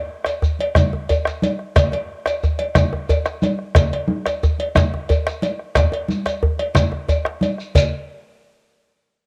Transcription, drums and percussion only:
0.25 bombo rim medium
0.25 cowbell soft
0.25 djembe slap medium
0.25 shekere soft
0.42 djembe slap soft
0.42 djembe bass medium
0.42 shekere soft
0.59 cowbell medium
0.59 djembe slap soft
0.59 high conga soft
0.75 bombo rim loud
0.75 bombo low loud
0.75 cowbell medium
0.75 djembe slap medium
0.75 high conga medium
0.75 low conga medium
0.75 shekere medium
0.93 djembe slap soft
0.93 djembe tone medium
1.09 cowbell medium
1.09 djembe bass medium
1.09 shekere soft
1.25 bombo rim medium
1.25 djembe slap medium
1.25 shekere soft
1.42 cowbell medium
1.42 djembe slap soft
1.42 high conga medium
1.42 shekere soft
1.59 bombo rim soft
1.76 bombo rim loud
1.76 bombo low loud
1.76 cowbell medium
1.76 djembe slap medium
1.76 high conga soft
1.76 djembe bass medium
1.76 low conga medium
1.76 shekere medium
1.92 cowbell medium
1.92 djembe tone medium
1.92 high conga soft
2.26 bombo rim medium
2.26 cowbell medium
2.26 djembe slap medium
2.26 shekere soft
2.43 djembe slap soft
2.43 djembe bass medium
2.43 shekere soft
2.59 cowbell medium
2.59 djembe slap soft
2.59 high conga soft
2.75 bombo rim loud
2.75 bombo low loud
2.75 cowbell medium
2.75 djembe slap medium
2.75 high conga medium
2.75 low conga medium
2.75 shekere medium
2.93 djembe slap soft
2.93 djembe tone medium
3.09 cowbell medium
3.09 djembe bass medium
3.09 shekere soft
3.26 bombo rim medium
3.26 djembe slap medium
3.26 shekere soft
3.42 cowbell medium
3.42 djembe slap soft
3.42 high conga medium
3.42 shekere soft
3.59 bombo rim soft
3.75 bombo rim loud
3.75 bombo low loud
3.75 cowbell medium
3.75 djembe slap medium
3.75 high conga soft
3.75 low conga medium
3.75 djembe bass medium
3.75 shekere medium
3.92 cowbell soft
3.92 high conga soft
3.92 djembe tone medium
4.08 high conga medium
4.26 bombo rim medium
4.26 cowbell medium
4.26 djembe slap medium
4.26 shekere soft
4.43 djembe slap soft
4.43 djembe bass loud
4.43 shekere soft
4.59 cowbell medium
4.59 djembe slap soft
4.59 high conga soft
4.75 bombo rim loud
4.75 bombo low loud
4.75 cowbell soft
4.75 djembe slap medium
4.75 high conga medium
4.75 low conga medium
4.75 shekere medium
4.94 djembe slap soft
4.94 djembe tone medium
5.09 cowbell soft
5.09 djembe bass medium
5.09 shekere soft
5.26 bombo rim medium
5.26 djembe slap medium
5.26 shekere soft
5.42 cowbell medium
5.42 djembe slap soft
5.42 high conga medium
5.42 shekere soft
5.59 bombo rim soft
5.75 bombo rim loud
5.75 bombo low loud
5.75 cowbell medium
5.75 djembe slap loud
5.75 djembe bass medium
5.75 low conga medium
5.75 shekere medium
5.92 cowbell soft
5.92 djembe tone medium
6.08 high conga medium
6.08 shekere soft
6.26 bombo rim medium
6.26 cowbell soft
6.26 djembe slap medium
6.26 shekere soft
6.43 djembe bass medium
6.59 bombo rim soft
6.59 cowbell medium
6.59 djembe slap soft
6.59 high conga soft
6.75 bombo rim medium
6.75 bombo low loud
6.75 cowbell soft
6.75 djembe slap medium
6.75 high conga medium
6.75 low conga medium
6.75 shekere medium
6.91 bombo rim soft
6.91 djembe slap soft
6.91 high conga soft
6.91 djembe tone medium
7.08 cowbell soft
7.08 djembe slap soft
7.08 high conga soft
7.08 djembe bass medium
7.08 shekere soft
7.25 bombo rim medium
7.25 djembe slap medium
7.41 cowbell soft
7.41 high conga medium
7.41 shekere soft
7.58 bombo rim soft
7.58 shekere soft
7.75 bombo low medium
7.75 cowbell medium
7.75 djembe bass medium
7.75 low conga medium
7.75 shekere medium

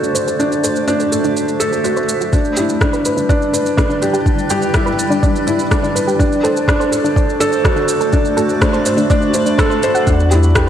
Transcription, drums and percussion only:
0.04 shaker soft
0.15 shaker medium
0.28 shaker soft
0.40 shaker soft
0.52 shaker soft
0.64 shaker medium
0.76 shaker soft
0.88 shaker soft
1.00 shaker soft
1.12 shaker medium
1.24 shaker soft
1.37 shaker soft
1.48 shaker soft
1.60 shaker medium
1.73 shaker soft
1.84 shaker soft
1.97 shaker soft
2.09 shaker medium
2.21 shaker soft
2.33 kick medium
2.33 shaker soft
2.45 shaker soft
2.57 shaker medium
2.69 shaker soft
2.81 kick medium
2.81 cross-stick medium
2.81 shaker soft
2.93 shaker soft
3.05 shaker medium
3.17 shaker soft
3.29 kick loud
3.29 shaker soft
3.42 shaker soft
3.54 shaker medium
3.66 shaker soft
3.78 kick loud
3.78 cross-stick medium
3.78 shaker soft
3.90 shaker soft
4.02 shaker medium
4.14 shaker soft
4.26 kick medium
4.26 shaker soft
4.39 shaker soft
4.50 shaker medium
4.62 shaker soft
4.74 kick medium
4.74 cross-stick medium
4.74 shaker soft
4.87 shaker soft
4.99 shaker medium
5.12 shaker soft
5.23 kick medium
5.23 shaker soft
5.36 shaker soft
5.47 shaker medium
5.59 shaker soft
5.71 kick loud
5.71 cross-stick medium
5.71 shaker soft
5.84 shaker soft
5.96 shaker medium
6.08 shaker soft
6.20 kick medium
6.20 shaker soft
6.32 shaker soft
6.44 shaker medium
6.57 shaker soft
6.68 kick loud
6.68 cross-stick medium
6.68 shaker soft
6.81 shaker soft
6.93 shaker medium
7.05 shaker soft
7.16 kick medium
7.16 shaker soft
7.29 shaker soft
7.41 shaker medium
7.52 shaker soft
7.65 kick loud
7.65 cross-stick medium
7.65 shaker soft
7.77 shaker soft
7.88 shaker medium
8.01 shaker soft
8.13 kick medium
8.13 shaker soft
8.25 shaker soft
8.37 shaker medium
8.49 shaker soft
8.62 kick loud
8.62 cross-stick loud
8.62 shaker soft
8.74 shaker soft
8.86 shaker medium
8.98 shaker soft
9.10 kick loud
9.10 shaker soft
9.22 shaker soft
9.34 shaker medium
9.46 shaker soft
9.59 kick loud
9.59 cross-stick medium
9.59 shaker soft
9.71 shaker soft
9.83 shaker medium
9.95 shaker soft
10.07 kick loud
10.07 shaker soft
10.20 shaker soft
10.31 shaker medium
10.43 shaker soft
10.55 kick loud
10.55 cross-stick loud
10.55 shaker soft

